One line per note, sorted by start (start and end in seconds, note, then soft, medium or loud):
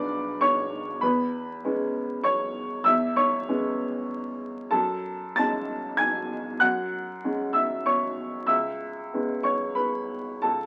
0.00 1.04 B1 medium
0.00 0.98 B3 soft
0.00 0.99 D4 soft
0.00 1.03 B4 medium
0.00 0.37 D5 medium
0.00 1.01 B5 medium
0.00 0.41 D6 medium
0.41 0.99 C#5 medium
0.41 1.02 C#6 medium
1.01 1.62 E2 medium
1.01 2.21 B4 medium
1.01 2.24 B5 medium
1.64 2.82 G#3 soft
1.64 2.82 B3 soft
1.64 2.82 C#4 soft
2.24 2.82 C#5 medium
2.24 2.85 C#6 medium
2.84 3.46 E2 medium
2.84 3.14 E5 medium
2.84 3.16 E6 loud
3.16 4.06 C#5 medium
3.16 4.09 C#6 medium
3.48 4.68 G#3 soft
3.48 4.69 B3 soft
3.48 4.69 C#4 soft
4.71 5.34 F#2 medium
4.71 5.32 A4 medium
4.71 5.36 A5 medium
5.36 6.58 G#3 soft
5.36 6.58 C#4 soft
5.36 5.95 A5 medium
5.36 5.98 A6 medium
5.97 6.57 G#5 medium
5.97 6.60 G#6 medium
6.60 7.22 F#2 medium
6.60 7.51 F#5 medium
6.60 7.55 F#6 medium
7.24 8.45 G#3 soft
7.24 8.45 C#4 soft
7.53 7.84 E5 medium
7.53 7.85 E6 medium
7.86 8.45 C#5 soft
7.86 8.49 C#6 medium
8.47 9.10 C#2 soft
8.47 9.40 E5 medium
8.47 9.43 E6 medium
9.14 10.40 G#3 soft
9.14 10.40 B3 soft
9.14 10.40 C#4 soft
9.43 9.75 C#5 soft
9.43 9.76 C#6 medium
9.75 10.39 B4 soft
9.75 10.43 B5 medium
10.42 10.66 C#2 soft
10.42 10.66 A4 soft
10.42 10.66 A5 medium